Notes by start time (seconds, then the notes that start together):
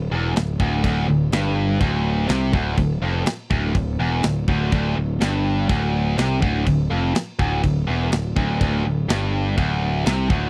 0.11 E1 E2
0.35 D1 D2, snare, crash
0.60 D1 D2, kick
0.84 D1 D2, kick, crash
1.08 D1 D2
1.32 G1 G2, snare, crash
1.81 D1 D2, kick, crash
2.29 C2 C3, snare, crash
2.53 D1 D2, kick
2.77 D1 D2, kick, crash
3.02 F1 F2
3.26 muted distorted electric guitar stroke, muted picked electric bass stroke, snare, crash
3.51 D1 D2, kick
3.75 D1 D2, kick, crash
3.99 E1 E2
4.23 D1 D2, snare, crash
4.48 D1 D2, kick
4.72 D1 D2, kick, crash
4.96 D1 D2
5.20 G1 G2, snare, crash
5.69 D1 D2, kick, crash
6.18 C2 C3, snare, crash
6.42 D1 D2, kick
6.66 D1 D2, kick, crash
6.91 F1 F2
7.15 muted distorted electric guitar stroke, muted picked electric bass stroke, snare, crash
7.39 D1 D2, kick
7.63 D1 D2, kick, crash
7.87 E1 E2
8.12 D1 D2, snare, crash
8.36 D1 D2, kick
8.61 D1 D2, kick, crash
8.85 D1 D2
9.09 G1 G2, snare, crash
9.58 D1 D2, kick, crash
10.06 C2 C3, snare, crash
10.30 D1 D2, kick